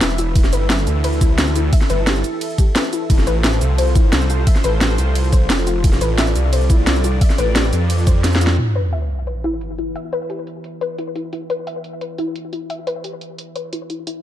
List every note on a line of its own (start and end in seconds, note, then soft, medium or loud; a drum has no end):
0.00 0.34 E1 loud
0.00 3.06 E4 medium
0.00 0.08 E4 medium
0.00 0.32 B4 medium
0.00 3.06 E5 medium
0.00 snare loud
0.00 closed hi-hat loud
0.00 ride medium
0.10 cabasa soft
0.18 0.28 E4 medium
0.18 closed hi-hat medium
0.18 cabasa medium
0.35 0.51 E1 loud
0.35 0.42 E4 medium
0.35 8.54 A4 medium
0.35 kick loud
0.35 closed hi-hat loud
0.35 ride medium
0.44 snare soft
0.44 cabasa soft
0.53 0.86 G1 loud
0.53 0.59 B4 loud
0.53 closed hi-hat medium
0.53 cabasa medium
0.70 0.76 E5 loud
0.70 snare loud
0.70 closed hi-hat loud
0.70 ride medium
0.78 cabasa soft
0.87 1.37 D2 loud
0.87 closed hi-hat medium
0.87 cabasa medium
1.04 1.10 B4 medium
1.04 closed hi-hat medium
1.04 ride medium
1.13 cabasa soft
1.21 1.31 E4 loud
1.21 kick loud
1.21 closed hi-hat medium
1.21 cabasa medium
1.38 1.71 D2 loud
1.38 snare loud
1.38 closed hi-hat loud
1.38 ride medium
1.47 cabasa soft
1.56 1.65 E4 medium
1.56 closed hi-hat medium
1.56 cabasa medium
1.73 1.79 E5 medium
1.73 kick loud
1.73 closed hi-hat medium
1.73 ride medium
1.81 snare soft
1.81 cabasa soft
1.90 2.23 G1 loud
1.90 1.96 B4 loud
1.90 closed hi-hat medium
1.90 cabasa medium
2.07 2.16 G4 medium
2.07 snare loud
2.07 closed hi-hat medium
2.07 ride medium
2.16 cabasa soft
2.24 closed hi-hat medium
2.24 cabasa medium
2.41 closed hi-hat medium
2.41 ride medium
2.50 cabasa soft
2.58 2.62 G4 medium
2.58 kick loud
2.58 closed hi-hat medium
2.58 cabasa medium
2.76 2.82 B4 medium
2.76 snare loud
2.76 closed hi-hat loud
2.76 ride medium
2.84 cabasa soft
2.93 2.99 E4 medium
2.93 closed hi-hat medium
2.93 cabasa medium
3.10 3.26 F1 medium
3.10 3.16 E4 medium
3.10 8.55 F4 medium
3.10 5.81 C5 medium
3.10 kick loud
3.10 closed hi-hat medium
3.10 ride medium
3.18 snare soft
3.18 cabasa soft
3.27 3.60 A1 loud
3.27 3.33 B4 loud
3.27 closed hi-hat medium
3.27 cabasa medium
3.44 3.50 E5 loud
3.44 snare loud
3.44 closed hi-hat medium
3.44 ride medium
3.53 cabasa soft
3.61 4.11 C2 loud
3.61 closed hi-hat medium
3.61 cabasa medium
3.78 3.85 C5 medium
3.78 closed hi-hat medium
3.78 ride medium
3.87 cabasa soft
3.95 4.05 E4 loud
3.95 kick loud
3.95 closed hi-hat medium
3.95 cabasa medium
4.13 4.46 C2 loud
4.13 snare loud
4.13 closed hi-hat medium
4.13 ride medium
4.21 cabasa soft
4.30 4.39 F4 medium
4.30 closed hi-hat medium
4.30 cabasa medium
4.47 4.53 E5 medium
4.47 kick loud
4.47 closed hi-hat medium
4.47 ride medium
4.55 snare soft
4.55 cabasa soft
4.64 4.97 A1 loud
4.64 4.70 B4 loud
4.64 closed hi-hat medium
4.64 cabasa medium
4.81 4.91 G4 medium
4.81 snare loud
4.81 closed hi-hat medium
4.81 ride medium
4.90 cabasa soft
4.98 5.48 C2 loud
4.98 closed hi-hat medium
4.98 cabasa medium
5.15 closed hi-hat medium
5.15 ride medium
5.24 cabasa soft
5.33 5.36 C5 loud
5.33 kick loud
5.33 closed hi-hat medium
5.33 cabasa medium
5.50 5.83 F1 loud
5.50 5.56 F4 medium
5.50 snare loud
5.50 closed hi-hat medium
5.50 ride medium
5.58 cabasa soft
5.67 5.76 F4 medium
5.67 closed hi-hat medium
5.67 cabasa medium
5.84 6.00 F1 loud
5.84 5.90 E4 medium
5.84 8.56 D5 medium
5.84 kick loud
5.84 closed hi-hat medium
5.84 ride medium
5.93 snare soft
5.93 cabasa soft
6.01 6.34 A1 loud
6.01 6.07 B4 loud
6.01 closed hi-hat medium
6.01 cabasa medium
6.18 6.25 E5 loud
6.18 snare loud
6.18 closed hi-hat medium
6.18 ride medium
6.27 cabasa soft
6.36 6.86 C2 loud
6.36 closed hi-hat medium
6.36 cabasa medium
6.53 6.59 C5 medium
6.53 closed hi-hat medium
6.53 ride medium
6.61 cabasa soft
6.70 6.79 E4 loud
6.70 kick loud
6.70 closed hi-hat medium
6.70 cabasa medium
6.87 7.20 C2 loud
6.87 snare loud
6.87 closed hi-hat loud
6.87 ride medium
6.96 cabasa soft
7.04 7.13 F4 medium
7.04 closed hi-hat medium
7.04 cabasa medium
7.21 7.28 E5 medium
7.21 kick loud
7.21 closed hi-hat loud
7.21 ride medium
7.30 snare soft
7.30 cabasa soft
7.38 7.71 A1 loud
7.38 7.45 B4 loud
7.38 closed hi-hat medium
7.38 cabasa medium
7.56 7.65 G4 medium
7.56 snare loud
7.56 closed hi-hat loud
7.56 ride medium
7.64 cabasa soft
7.73 8.57 F2 loud
7.73 closed hi-hat medium
7.73 cabasa medium
7.90 closed hi-hat loud
7.90 ride medium
7.98 cabasa soft
8.07 8.11 C5 loud
8.07 kick loud
8.07 closed hi-hat medium
8.07 cabasa medium
8.24 8.30 F4 medium
8.24 snare medium
8.24 closed hi-hat medium
8.24 ride medium
8.33 snare medium
8.33 cabasa soft
8.41 8.51 F4 medium
8.41 closed hi-hat medium
8.41 cabasa medium
8.47 snare loud
8.58 8.65 E4 medium
8.58 14.03 E4 medium
8.58 14.03 B4 medium
8.58 14.03 E5 medium
8.58 closed hi-hat medium
8.58 sub drop medium
8.75 8.82 B4 loud
8.75 closed hi-hat medium
8.93 8.99 E5 loud
8.93 closed hi-hat medium
9.10 closed hi-hat medium
9.27 9.33 B4 medium
9.27 closed hi-hat medium
9.44 9.54 E4 loud
9.44 closed hi-hat medium
9.61 closed hi-hat medium
9.78 9.88 E4 medium
9.78 closed hi-hat medium
9.96 10.02 E5 medium
9.96 closed hi-hat medium
10.13 10.19 B4 loud
10.13 closed hi-hat medium
10.30 10.39 G4 medium
10.30 closed hi-hat medium
10.47 closed hi-hat medium
10.64 closed hi-hat medium
10.81 10.85 B4 loud
10.81 closed hi-hat medium
10.98 11.05 E4 medium
10.98 closed hi-hat medium
11.16 11.25 E4 medium
11.16 closed hi-hat medium
11.33 11.39 E4 medium
11.33 closed hi-hat medium
11.50 11.56 B4 loud
11.50 closed hi-hat medium
11.67 11.73 E5 loud
11.67 closed hi-hat medium
11.84 closed hi-hat medium
12.01 12.07 B4 medium
12.01 closed hi-hat medium
12.18 12.28 E4 loud
12.18 closed hi-hat medium
12.36 closed hi-hat medium
12.53 12.62 E4 medium
12.53 closed hi-hat medium
12.70 12.76 E5 medium
12.70 closed hi-hat medium
12.87 12.93 B4 loud
12.87 closed hi-hat medium
13.04 13.13 G4 medium
13.04 closed hi-hat medium
13.21 closed hi-hat medium
13.38 closed hi-hat medium
13.56 13.59 B4 loud
13.56 closed hi-hat medium
13.73 13.79 E4 medium
13.73 closed hi-hat medium
13.90 13.99 E4 medium
13.90 closed hi-hat medium
14.07 14.13 E4 medium
14.07 14.22 F4 medium
14.07 14.22 C5 medium
14.07 14.22 G5 medium
14.07 closed hi-hat medium